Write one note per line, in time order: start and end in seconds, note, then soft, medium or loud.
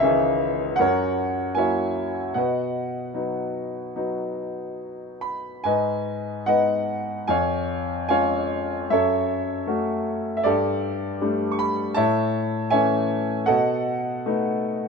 0.00 0.75 C#2 medium
0.00 0.77 D#3 medium
0.00 0.76 E3 soft
0.00 0.77 C#4 soft
0.00 0.05 G#4 medium
0.00 0.81 D#5 medium
0.00 0.74 E5 medium
0.05 0.76 G#4 medium
0.76 2.31 F#2 medium
0.76 1.57 F#5 medium
0.80 2.32 A#4 medium
0.80 1.57 C#5 medium
1.55 2.33 F#3 soft
1.55 2.33 A#3 soft
1.55 2.33 E4 soft
1.55 2.32 C#5 medium
1.55 2.32 E5 medium
1.55 2.37 G#5 medium
2.34 5.61 B2 medium
2.34 3.93 B4 soft
2.34 3.93 D#5 soft
2.34 3.91 F#5 medium
3.14 3.93 F#3 soft
3.14 3.93 B3 soft
3.14 3.93 D#4 soft
3.96 4.78 F#3 soft
3.96 4.78 B3 soft
3.96 4.78 D#4 soft
5.21 5.65 B5 medium
5.64 7.25 G#2 medium
5.64 6.47 B4 medium
5.64 6.47 D#5 medium
5.64 6.49 G#5 medium
6.46 7.26 G#3 soft
6.46 7.26 B3 soft
6.46 7.26 D#4 soft
6.46 7.25 B4 medium
6.46 7.25 D#5 medium
6.46 7.30 F#5 medium
7.28 8.86 F2 medium
7.28 8.10 C#5 medium
7.28 8.09 F5 medium
7.28 8.06 G#5 medium
8.09 8.88 G#3 soft
8.09 8.88 C#4 soft
8.09 8.88 F4 soft
8.09 8.87 C#5 medium
8.09 8.87 F5 medium
8.09 8.92 G#5 medium
8.90 10.41 F#2 medium
8.90 10.42 A4 medium
8.90 10.42 C#5 medium
8.90 10.35 E5 medium
9.67 10.42 A3 soft
9.67 10.42 C#4 soft
9.67 10.43 F#4 soft
10.37 10.44 E5 medium
10.44 11.93 G2 medium
10.44 11.94 G4 medium
10.44 11.94 A4 medium
10.44 11.48 D5 medium
11.21 11.95 G3 soft
11.21 11.95 A3 soft
11.21 11.96 D4 soft
11.52 11.59 C#6 medium
11.59 11.98 B5 medium
11.95 13.44 A2 medium
11.95 12.70 C#5 medium
11.95 12.69 E5 medium
11.95 12.74 A5 medium
12.70 13.46 E3 soft
12.70 13.47 A3 soft
12.70 13.47 C#4 medium
12.70 13.44 C#5 medium
12.70 13.44 E5 medium
12.70 13.50 G#5 medium
13.46 14.88 B2 medium
13.46 14.88 A4 medium
13.46 14.88 D#5 medium
13.46 14.88 F#5 medium
14.26 14.88 A3 soft
14.26 14.88 B3 soft
14.26 14.88 D#4 medium